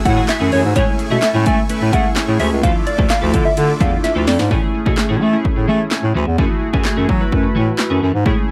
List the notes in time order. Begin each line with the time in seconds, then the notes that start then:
Already playing: A3 F#5 G#5 E6
0.05 A2 A3 E4 F#4 G#4 F#5, muted clean electric guitar stroke, kick, closed hi-hat
0.17 E3 A3 C#4 G#4
0.29 E5, muted clean electric guitar stroke, snare, clap, closed hi-hat
0.40 F#2 E3 A3 C#4 E4 F#4 G#4
0.52 F#2 E3 A3 C#4 G#4 C#5, open hi-hat
0.64 G#2, muted clean electric guitar stroke
0.75 A2 G#3 A3 C#4 E4 G#4 C#5 C#6, kick, closed hi-hat
0.87 muted clean electric guitar stroke
0.99 muted clean electric guitar stroke, closed hi-hat
1.10 B2 G#3 A3 C#4 E4 G#4 A4 E5
1.22 muted clean electric guitar stroke, snare, clap, closed hi-hat
1.34 A2 G#3 C#4 E4 G#4
1.46 G#3 A3 C#4 E4 G#4 G#5, kick, closed hi-hat
1.57 muted clean electric guitar stroke
1.69 A3 C#4 E4 B4, muted clean electric guitar stroke, closed hi-hat
1.81 A2, muted clean electric guitar stroke
1.92 G#3 A3 C#4 E4 G#4 F#5, kick, closed hi-hat
2.04 muted clean electric guitar stroke
2.16 muted clean electric guitar stroke, snare, clap, closed hi-hat
2.28 A2 A3 C#4 E4 G#4, muted clean electric guitar stroke
2.39 D2 G#3 C#4 E4 G#4 E5, open hi-hat
2.51 C#2, muted clean electric guitar stroke
2.63 D2 F3 A3 D4 E4 F4 A4 D5 F5 D6, kick, closed hi-hat
2.75 muted clean electric guitar stroke
2.86 D5, muted clean electric guitar stroke, closed hi-hat
2.98 D2 F3 A3 D4 E4 F4 A4, kick
3.10 F5, muted clean electric guitar stroke, snare, clap, closed hi-hat
3.21 D2 F3 A3 E4 A4
3.33 D3 F3 A3 E4 A4, kick, closed hi-hat
3.45 E5, muted clean electric guitar stroke
3.57 D3 A3 D4 E4 F4, muted clean electric guitar stroke, closed hi-hat
3.69 muted clean electric guitar stroke
3.80 E2 F3 A3 D4 E4 F4 A4 F5, kick, closed hi-hat
3.92 muted clean electric guitar stroke
4.04 E5, muted clean electric guitar stroke, snare, closed hi-hat
4.15 D2 F3 A3 D4 E4 F4 A4
4.27 F2 F3 A3 E4 A4 D5, snare, open hi-hat
4.39 G#2, muted clean electric guitar stroke, snare
4.50 A2 E3 A3 C#4 E4 G#4, kick
4.62 muted clean electric guitar stroke
4.74 muted clean electric guitar stroke
4.86 B2 E3 A3 C#4 E4 G#4, kick
4.97 muted clean electric guitar stroke, snare, clap
5.09 A2 E3 A3 C#4 G#4
5.21 E3 A3 C#4 G#4
5.33 A3 C#4 E4 G#4, muted clean electric guitar stroke
5.44 muted clean electric guitar stroke, kick
5.56 A2, muted clean electric guitar stroke
5.68 E3 A3 C#4 G#4
5.80 muted clean electric guitar stroke
5.91 muted clean electric guitar stroke, snare, clap
6.03 A2, muted clean electric guitar stroke
6.15 D2 E3 A3 C#4 G#4
6.27 E2, muted clean electric guitar stroke
6.38 F#2 E3 A3 C#4 E4 F#4 G#4, kick
6.50 muted clean electric guitar stroke
6.62 muted clean electric guitar stroke
6.73 F#2 E3 A3 C#4 E4 F#4 G#4, kick
6.85 muted clean electric guitar stroke, snare, clap
6.97 F#2 E3 A3 C#4 G#4
7.08 E3 F#3 A3 C#4 G#4, kick
7.20 A3 E4 F#4 B4, muted clean electric guitar stroke
7.32 F#2, muted clean electric guitar stroke, kick
7.43 muted clean electric guitar stroke
7.55 A2 E3 A3 C#4 G#4
7.67 muted clean electric guitar stroke
7.79 muted clean electric guitar stroke, snare, clap
7.90 F#2 E3 A3 C#4 G#4
8.02 F#2 E3 A3 C#4 G#4
8.14 G#2, muted clean electric guitar stroke
8.25 A2 G#3 A3 C#4 E4 G#4, kick
8.37 muted clean electric guitar stroke